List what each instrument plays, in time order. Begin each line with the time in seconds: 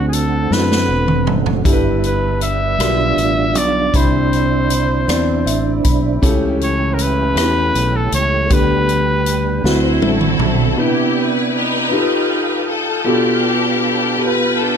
Already playing: fingered electric bass D2, grand piano D3 C4 D4 F#4 A4, tonewheel organ D3 A3 C4 F#4
0.08 trumpet G#4
0.13 trumpet A4, closed hi-hat
0.50 fingered electric bass F#2, grand piano C4 D4 E4 A4, trumpet B4, snare
0.57 grand piano F#4
0.72 snare
0.89 fingered electric bass E1
1.08 mid tom
1.27 fingered electric bass F#1, mid tom
1.46 floor tom
1.64 fingered electric bass G1, grand piano G2 D4 E4 G4 A4, tonewheel organ G3 B3 E4, kick, closed hi-hat
1.72 grand piano B4
2.04 trumpet B4, closed hi-hat
2.41 trumpet E5, closed hi-hat
2.79 fingered electric bass B1, grand piano B2 D4 F4 G4 A#4, tonewheel organ D4 F4, cross-stick, closed hi-hat
2.87 grand piano B4
3.17 fingered electric bass A1, closed hi-hat
3.55 fingered electric bass B1, trumpet D5, closed hi-hat
3.93 fingered electric bass C2, grand piano C3 C4 D4 E4 B5, tonewheel organ C4 E4, trumpet C5, kick, closed hi-hat
4.33 closed hi-hat
4.70 closed hi-hat
5.08 fingered electric bass E2, grand piano C4 D4 E4 D5, cross-stick, closed hi-hat
5.46 fingered electric bass A1, grand piano E5, closed hi-hat
5.84 fingered electric bass B1, grand piano B5, kick, closed hi-hat
6.22 fingered electric bass C#2, grand piano C#3 C#4 E4 G4 A4, tonewheel organ E3 A3 C#4 G4, kick, closed hi-hat
6.61 trumpet C#5, closed hi-hat
6.94 trumpet A#4
6.99 trumpet B4, closed hi-hat
7.36 fingered electric bass E2, grand piano B3 E4 G4 B4, cross-stick, closed hi-hat
7.43 grand piano C#4
7.74 fingered electric bass B1, closed hi-hat
7.96 trumpet A4
8.12 fingered electric bass C#2, trumpet C#5, closed hi-hat
8.49 fingered electric bass D2, tonewheel organ D3 G3 B3 G4, grand piano D3 B3 D4 G4 B4, trumpet B4, kick, closed hi-hat
8.89 closed hi-hat
9.26 closed hi-hat
9.64 fingered electric bass D2, grand piano D3 C4 D4 E4 F#4, tonewheel organ D3 F#3 C4 E4, string section E4 F#4 C5, snare
10.02 fingered electric bass A1, string section C4 F#4 A4, grand piano E5, high tom
10.21 mid tom
10.39 fingered electric bass B1, grand piano A5, mid tom
10.77 grand piano C3 B3 D4 E4 B4, tonewheel organ B3 D5 G5, string section B3 E4 G4
11.18 string section B4
11.55 string section D#4 G4 B4
11.91 grand piano D#4 F4 G4 A4, tonewheel organ A4 F5 G5 D#6
12.68 string section A4
13.05 grand piano B2 B3 F4 G4 A4, tonewheel organ B3 B5, string section D4 G4
14.17 grand piano B3 F4 G4 A4, string section B4
14.25 grand piano B4
14.58 string section D4 F4 A4